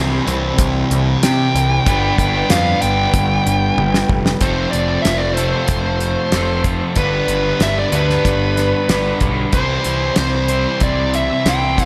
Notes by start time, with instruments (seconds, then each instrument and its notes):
Already playing: picked electric bass C2, distorted electric guitar C3 G3 C4, overdriven electric guitar C3 E3 G3 C4 E4 C5, tonewheel organ E4 G4 C5 G5
0.27 picked electric bass C2, distorted electric guitar C3 G3 C4, closed hi-hat
0.58 picked electric bass C2, kick, closed hi-hat
0.91 picked electric bass C2, closed hi-hat
1.23 picked electric bass C3, lead electric guitar G5, snare, closed hi-hat
1.55 picked electric bass C2, closed hi-hat
1.85 picked electric bass G1, distorted electric guitar G2 D3, overdriven electric guitar G3 B3 D4 B4, tonewheel organ D4 G4 B4 G5, kick, closed hi-hat
1.89 distorted electric guitar G3
2.18 picked electric bass G1, lead electric guitar G5, kick, closed hi-hat
2.50 picked electric bass F2, lead electric guitar F5, snare, closed hi-hat
2.81 picked electric bass G1, distorted electric guitar G2 D3 G3, lead electric guitar G5, closed hi-hat
3.13 picked electric bass G1, kick, closed hi-hat
3.46 picked electric bass G1, closed hi-hat
3.77 picked electric bass G1, high tom
3.94 snare
4.09 picked electric bass F1, kick
4.26 snare
4.40 picked electric bass F1, distorted electric guitar F2 C3, overdriven electric guitar F3 A3 C4 F4, tonewheel organ C4 F4 A4 F5, lead electric guitar C5, kick, closed hi-hat
4.44 distorted electric guitar F3, overdriven electric guitar A4
4.71 picked electric bass F1, lead electric guitar D5, closed hi-hat
5.02 picked electric bass F1, lead electric guitar E5, snare, closed hi-hat
5.17 lead electric guitar D5
5.34 overdriven electric guitar A4, lead electric guitar C5, closed hi-hat
5.38 overdriven electric guitar F3 A3 C4 F4
5.68 picked electric bass F1, kick, closed hi-hat
6.00 closed hi-hat
6.32 picked electric bass F1, overdriven electric guitar F3 A3 C4 F4, snare, closed hi-hat
6.36 overdriven electric guitar A4
6.64 kick, closed hi-hat
6.96 picked electric bass G1, distorted electric guitar G2 D3, overdriven electric guitar G3 B3 D4 B4, tonewheel organ B3 D4 G4 D5, lead electric guitar B4, kick, closed hi-hat
7.00 distorted electric guitar G3
7.28 picked electric bass G1, closed hi-hat
7.60 picked electric bass G1, lead electric guitar E5, snare, closed hi-hat
7.79 lead electric guitar D5
7.92 picked electric bass D2, overdriven electric guitar G3 B3 D4 B4, lead electric guitar B4, closed hi-hat
8.10 snare
8.25 picked electric bass G1, kick, closed hi-hat
8.57 snare, closed hi-hat
8.89 picked electric bass G1, overdriven electric guitar G3 B3 D4 B4, snare, closed hi-hat
9.21 picked electric bass B1, kick, closed hi-hat
9.52 picked electric bass C2, overdriven electric guitar C3 E3 G3 C4 E4 C5, distorted electric guitar C3 G3, tonewheel organ G3 C4 E4 C5, lead electric guitar C5, kick, closed hi-hat
9.57 distorted electric guitar C4
9.84 picked electric bass C2, closed hi-hat
10.16 picked electric bass C2, lead electric guitar C5, snare, closed hi-hat
10.48 overdriven electric guitar C3 E3 G3 C4 E4 C5, closed hi-hat
10.80 picked electric bass C2, lead electric guitar D5, kick, closed hi-hat
11.14 lead electric guitar E5, closed hi-hat
11.45 picked electric bass C2, overdriven electric guitar C3 E3 G3 C4 E4 C5, lead electric guitar G5, snare, closed hi-hat
11.78 kick, closed hi-hat